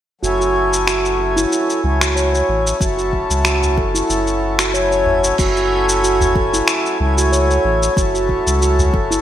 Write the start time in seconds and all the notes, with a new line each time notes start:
0.21 F#1 F#3 A3 C#4 E4 F#4, shaker
0.25 G#5
0.40 F#4, shaker
0.73 shaker
0.87 F#4, finger snap, shaker
1.05 shaker
1.20 A4
1.36 E4, shaker
1.52 shaker
1.70 shaker
1.82 C#2 F#3 A3 C#4 E4 G#5
2.01 F#4, finger snap, shaker
2.16 C#5, shaker
2.33 C#5, shaker
2.49 A1
2.67 shaker
2.79 F#1 F#3 A3 C#4 E4 F#4, kick, shaker
2.83 A4
2.98 F#4, shaker
3.13 kick
3.30 C#2, shaker
3.45 F#4, finger snap, shaker
3.63 udu, shaker
3.77 F#1 A4, kick
3.94 E4, shaker
4.10 F#1, shaker
4.27 shaker
4.59 F#4, finger snap, shaker
4.74 F#3 A3 C#4 E4 C#5 G#5, shaker
4.91 C#5, shaker
5.06 udu
5.24 shaker
5.38 F#1 F#3 A3 C#4 E4 F#4 G#5, kick, crash, shaker
5.56 F#4, shaker
5.89 shaker
6.03 F#4, shaker
6.21 udu, shaker
6.36 A4, kick
6.53 E4, shaker
6.68 finger snap, shaker
6.86 shaker
6.98 C#2 F#3 A3 C#4 E4
7.02 G#5
7.17 F#4, shaker
7.32 C#5, shaker
7.50 C#5, shaker
7.64 A1
7.83 shaker
7.95 F#1 F#3 A3 C#4 E4 F#4, kick, shaker
7.99 A4
8.14 F#4, shaker
8.29 kick
8.47 C#2, shaker
8.61 F#4, shaker
8.79 udu, shaker
8.93 F#1 A4, kick
9.11 E4, shaker